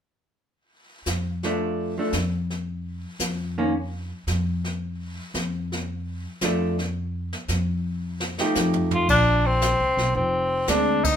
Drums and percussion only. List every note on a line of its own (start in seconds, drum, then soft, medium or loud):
0.54 brush sweep soft
1.06 snare soft
1.06 hi-hat pedal soft
1.43 snare soft
1.59 brush sweep soft
2.12 snare soft
2.12 hi-hat pedal soft
2.50 snare soft
2.66 brush sweep soft
3.19 snare soft
3.19 hi-hat pedal soft
3.73 brush sweep soft
4.27 snare soft
4.27 hi-hat pedal soft
4.64 snare soft
4.81 brush sweep soft
5.34 snare soft
5.34 hi-hat pedal soft
5.72 snare soft
5.88 brush sweep soft
6.41 snare soft
6.41 hi-hat pedal soft
6.79 snare soft
6.95 brush sweep soft
7.33 snare soft
7.48 snare soft
7.48 hi-hat pedal soft
8.20 snare soft
8.38 snare soft
8.55 snare soft
8.55 hi-hat pedal soft
8.73 floor tom medium
8.91 floor tom medium
9.09 brush sweep soft
9.09 kick medium
9.09 crash medium
9.62 snare medium
9.62 hi-hat pedal medium
9.98 snare soft
10.15 brush sweep soft
10.67 snare medium
10.67 hi-hat pedal medium
11.04 kick medium
11.04 crash medium